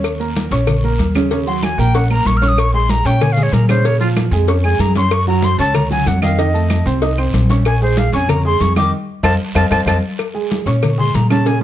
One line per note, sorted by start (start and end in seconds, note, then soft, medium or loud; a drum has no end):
0.00 0.46 D#2 medium
0.00 0.15 C#4 medium
0.00 0.15 C#5 medium
0.00 0.15 C#6 medium
0.04 cowbell loud
0.04 high conga soft
0.04 long guiro medium
0.04 claves medium
0.04 maracas medium
0.20 0.46 A#3 medium
0.20 0.46 A#4 medium
0.20 0.46 A#5 medium
0.20 high conga soft
0.20 maracas medium
0.36 cowbell medium
0.36 high conga medium
0.36 short guiro medium
0.36 maracas medium
0.51 0.96 A#1 medium
0.51 0.78 C#4 medium
0.51 0.78 C#5 medium
0.51 0.78 C#6 medium
0.51 cowbell medium
0.51 high conga soft
0.51 short guiro medium
0.51 maracas soft
0.67 cowbell loud
0.67 high conga soft
0.67 low conga medium
0.67 long guiro medium
0.67 claves medium
0.67 maracas medium
0.84 1.10 A#3 medium
0.84 1.10 A#4 medium
0.84 1.10 A#5 medium
0.84 high conga soft
0.99 1.73 D#2 medium
0.99 cowbell medium
0.99 high conga medium
0.99 short guiro medium
0.99 maracas medium
1.15 1.28 C#3 loud
1.15 1.29 C#4 medium
1.15 1.29 C#5 medium
1.15 cowbell medium
1.15 high conga medium
1.15 short guiro medium
1.15 claves medium
1.15 maracas soft
1.31 1.45 C#3 medium
1.31 1.45 C#4 medium
1.31 1.45 C#5 medium
1.31 cowbell loud
1.31 long guiro medium
1.31 maracas medium
1.47 1.73 F#3 medium
1.47 1.73 F#4 medium
1.47 1.73 F#5 medium
1.47 1.65 C6 medium
1.47 high conga soft
1.47 maracas medium
1.62 1.81 G#5 medium
1.62 cowbell medium
1.62 high conga medium
1.62 short guiro medium
1.62 claves medium
1.62 maracas medium
1.78 2.22 A#1 loud
1.78 1.92 A#3 medium
1.78 1.92 A#4 medium
1.78 1.96 G5 loud
1.78 1.92 A#5 medium
1.78 high conga soft
1.78 short guiro medium
1.78 maracas soft
1.94 2.07 C#4 medium
1.94 2.08 C#5 medium
1.94 2.10 F#5 medium
1.94 2.08 C#6 medium
1.94 cowbell loud
1.94 high conga soft
1.94 long guiro medium
1.94 maracas medium
2.10 2.36 A#3 medium
2.10 2.37 A#4 medium
2.10 2.28 A#5 loud
2.10 2.37 A#5 medium
2.10 high conga soft
2.10 claves medium
2.25 2.99 A#1 medium
2.25 2.39 C#6 loud
2.25 cowbell medium
2.25 high conga medium
2.25 short guiro medium
2.25 maracas medium
2.37 2.50 F6 loud
2.42 2.68 C#4 medium
2.42 2.68 C#5 medium
2.42 2.68 C#6 medium
2.42 cowbell medium
2.42 high conga medium
2.42 short guiro medium
2.42 maracas soft
2.48 2.61 D#6 loud
2.58 2.74 C#6 loud
2.58 cowbell loud
2.58 high conga soft
2.58 long guiro medium
2.58 claves medium
2.58 maracas medium
2.74 3.00 G#3 medium
2.74 3.00 G#4 medium
2.74 3.00 G#5 medium
2.74 2.92 C6 loud
2.74 high conga soft
2.89 3.08 A#5 loud
2.89 cowbell medium
2.89 high conga medium
2.89 short guiro medium
2.89 maracas medium
3.05 3.49 A#2 loud
3.05 3.32 C#4 medium
3.05 3.32 C#5 medium
3.05 3.24 G5 medium
3.05 3.32 C#6 medium
3.05 cowbell medium
3.05 high conga soft
3.05 short guiro medium
3.05 maracas soft
3.21 3.34 G#5 loud
3.21 cowbell loud
3.21 high conga soft
3.21 low conga medium
3.21 long guiro medium
3.21 claves medium
3.21 maracas medium
3.32 3.44 F5 loud
3.37 3.63 G#3 medium
3.37 3.63 G#4 medium
3.37 3.64 G#5 medium
3.37 high conga soft
3.37 low conga medium
3.37 maracas medium
3.43 3.54 C#5 medium
3.52 4.26 A#2 medium
3.52 3.69 A#4 medium
3.52 cowbell medium
3.52 high conga medium
3.52 short guiro medium
3.52 maracas medium
3.69 3.82 C#3 medium
3.69 3.82 C#4 medium
3.69 3.87 C5 medium
3.69 3.82 C#5 medium
3.69 cowbell medium
3.69 high conga loud
3.69 short guiro medium
3.69 claves medium
3.69 maracas soft
3.85 3.98 C#3 medium
3.85 3.98 C#4 medium
3.85 3.98 C#5 medium
3.85 3.99 C#5 loud
3.85 cowbell loud
3.85 high conga soft
3.85 long guiro medium
3.85 maracas medium
4.00 4.27 F3 medium
4.00 4.10 F4 medium
4.00 4.27 F4 medium
4.00 4.27 F5 medium
4.00 high conga soft
4.00 maracas medium
4.16 cowbell medium
4.16 high conga loud
4.16 short guiro medium
4.16 claves medium
4.16 maracas medium
4.31 4.76 F2 loud
4.31 4.46 G#3 medium
4.31 4.46 G#4 medium
4.31 4.46 G#5 medium
4.31 high conga soft
4.31 short guiro medium
4.31 maracas soft
4.48 4.61 C#4 medium
4.48 4.61 C#5 medium
4.48 4.62 C#6 medium
4.48 cowbell loud
4.48 high conga soft
4.48 long guiro medium
4.48 maracas medium
4.64 4.90 G#3 medium
4.64 4.91 G#4 medium
4.64 4.82 G#5 medium
4.64 4.91 G#5 medium
4.64 high conga soft
4.64 claves medium
4.79 5.53 F#2 medium
4.79 4.96 A#5 medium
4.79 cowbell medium
4.79 high conga medium
4.79 short guiro medium
4.79 maracas medium
4.95 5.22 C#4 medium
4.95 5.22 C#5 medium
4.95 5.15 C6 loud
4.95 5.23 C#6 medium
4.95 cowbell medium
4.95 high conga medium
4.95 short guiro medium
4.95 maracas soft
5.11 5.28 C#6 loud
5.11 cowbell loud
5.11 long guiro medium
5.11 claves medium
5.11 maracas medium
5.27 5.53 F#3 medium
5.27 5.54 F#4 medium
5.27 5.54 F#5 medium
5.27 5.46 A#5 loud
5.27 high conga soft
5.42 5.59 C6 loud
5.42 cowbell medium
5.42 high conga medium
5.42 short guiro medium
5.42 maracas medium
5.58 6.03 C#2 medium
5.58 5.85 C#4 medium
5.58 5.85 C#5 medium
5.58 5.77 A5 loud
5.58 5.85 C#6 medium
5.58 cowbell medium
5.58 high conga soft
5.58 short guiro medium
5.58 maracas soft
5.74 5.91 A#5 loud
5.74 cowbell loud
5.74 high conga soft
5.74 low conga medium
5.74 long guiro medium
5.74 claves medium
5.74 maracas medium
5.91 6.17 F#3 medium
5.91 6.17 F#4 medium
5.91 6.17 F#5 medium
5.91 6.09 G#5 medium
5.91 high conga soft
5.91 low conga medium
5.91 maracas medium
6.06 6.80 F2 medium
6.06 6.22 F#5 medium
6.06 cowbell medium
6.06 high conga medium
6.06 short guiro medium
6.06 maracas medium
6.22 6.35 D#3 loud
6.22 6.36 D#4 medium
6.22 6.36 D#5 loud
6.22 6.41 F5 loud
6.22 cowbell medium
6.22 high conga loud
6.22 short guiro medium
6.22 claves medium
6.22 maracas soft
6.38 6.51 D#3 medium
6.38 6.52 D#4 medium
6.38 6.52 D#5 medium
6.38 6.86 D#5 medium
6.38 cowbell loud
6.38 high conga soft
6.38 long guiro medium
6.38 maracas medium
6.54 6.80 A3 medium
6.54 6.80 A4 medium
6.54 6.81 A5 medium
6.54 high conga soft
6.54 maracas medium
6.70 cowbell medium
6.70 high conga medium
6.70 short guiro medium
6.70 claves medium
6.70 maracas medium
6.86 7.30 C2 loud
6.86 6.99 C4 medium
6.86 6.99 C5 medium
6.86 6.99 C6 medium
6.86 high conga soft
6.86 short guiro medium
6.86 maracas soft
7.02 7.15 D#4 medium
7.02 7.15 D#5 medium
7.02 7.15 D#6 medium
7.02 cowbell loud
7.02 high conga soft
7.02 long guiro medium
7.02 maracas medium
7.18 7.44 C4 medium
7.18 7.44 C5 medium
7.18 7.44 C6 medium
7.18 high conga soft
7.18 claves medium
7.33 8.07 A#1 medium
7.33 cowbell medium
7.33 high conga medium
7.33 short guiro medium
7.33 maracas medium
7.50 7.76 C#4 medium
7.50 7.76 C#5 medium
7.50 7.76 C#6 medium
7.50 cowbell medium
7.50 high conga medium
7.50 short guiro medium
7.50 maracas soft
7.65 7.81 G#5 medium
7.65 cowbell loud
7.65 high conga soft
7.65 long guiro medium
7.65 claves medium
7.65 maracas medium
7.82 8.07 G#3 medium
7.82 8.08 G#4 medium
7.82 8.00 C5 medium
7.82 8.08 G#5 medium
7.82 high conga soft
7.97 8.13 F5 medium
7.97 cowbell medium
7.97 high conga medium
7.97 short guiro medium
7.97 maracas medium
8.12 8.57 F2 medium
8.12 8.39 C#4 medium
8.12 8.39 C#5 medium
8.12 8.31 G#5 loud
8.12 8.39 C#6 medium
8.12 cowbell medium
8.12 high conga soft
8.12 short guiro medium
8.12 maracas soft
8.29 8.45 A#5 medium
8.29 cowbell loud
8.29 high conga soft
8.29 low conga medium
8.29 long guiro medium
8.29 claves medium
8.29 maracas medium
8.45 8.70 G#3 medium
8.45 8.71 G#4 medium
8.45 8.71 G#5 medium
8.45 8.63 C6 loud
8.45 high conga soft
8.60 8.90 F2 medium
8.60 8.76 C#6 loud
8.60 cowbell medium
8.60 high conga medium
8.60 short guiro medium
8.60 maracas medium
8.76 8.89 D#3 medium
8.76 8.89 D#4 medium
8.76 8.90 D#5 medium
8.76 8.91 D6 loud
8.76 cowbell medium
8.76 high conga medium
8.76 short guiro medium
8.76 claves medium
8.76 maracas soft
9.23 9.35 F2 medium
9.23 9.34 C5 loud
9.23 9.34 D#5 loud
9.23 9.34 F5 loud
9.23 9.34 A5 loud
9.23 cowbell loud
9.23 high conga loud
9.23 long guiro loud
9.23 claves loud
9.23 maracas loud
9.55 9.67 F2 medium
9.55 9.65 C5 loud
9.55 9.65 D#5 medium
9.55 9.65 F5 loud
9.55 9.66 A5 loud
9.55 cowbell loud
9.55 high conga loud
9.55 long guiro loud
9.55 claves loud
9.55 maracas loud
9.70 9.83 F2 medium
9.70 9.81 C5 medium
9.70 9.81 D#5 medium
9.70 9.81 F5 medium
9.70 9.81 A5 loud
9.70 cowbell loud
9.70 high conga loud
9.70 long guiro loud
9.70 claves loud
9.70 maracas medium
9.86 9.98 F2 medium
9.86 9.97 C5 loud
9.86 9.97 D#5 medium
9.86 9.97 F5 medium
9.86 9.98 A5 loud
9.86 cowbell loud
9.86 high conga loud
9.86 long guiro loud
9.86 claves loud
9.86 maracas loud
10.19 cowbell medium
10.19 high conga soft
10.19 long guiro medium
10.19 claves medium
10.19 maracas medium
10.34 10.60 G#3 medium
10.34 10.61 G#4 medium
10.34 10.61 G#5 medium
10.34 high conga soft
10.51 cowbell medium
10.51 high conga loud
10.51 short guiro medium
10.51 maracas medium
10.66 11.11 A#2 medium
10.66 10.92 C#4 medium
10.66 10.93 C#5 medium
10.66 10.93 C#6 medium
10.66 cowbell medium
10.66 high conga soft
10.66 short guiro medium
10.66 maracas soft
10.82 cowbell loud
10.82 high conga soft
10.82 low conga medium
10.82 long guiro medium
10.82 claves medium
10.82 maracas medium
10.98 11.24 G#3 medium
10.98 11.24 G#4 medium
10.98 11.25 G#5 medium
10.98 11.17 C6 medium
10.98 high conga soft
10.98 low conga medium
11.14 11.63 A#2 medium
11.14 11.30 A#5 medium
11.14 cowbell medium
11.14 high conga medium
11.14 short guiro medium
11.14 maracas medium
11.30 11.43 C#3 medium
11.30 11.43 C#4 medium
11.30 11.43 C#5 medium
11.30 11.49 A5 loud
11.30 cowbell medium
11.30 high conga loud
11.30 short guiro medium
11.30 claves medium
11.30 maracas soft
11.45 11.59 C#3 medium
11.45 11.59 C#4 medium
11.45 11.59 C#5 medium
11.45 11.62 G#5 medium
11.45 cowbell loud
11.45 high conga soft
11.45 long guiro medium
11.45 maracas medium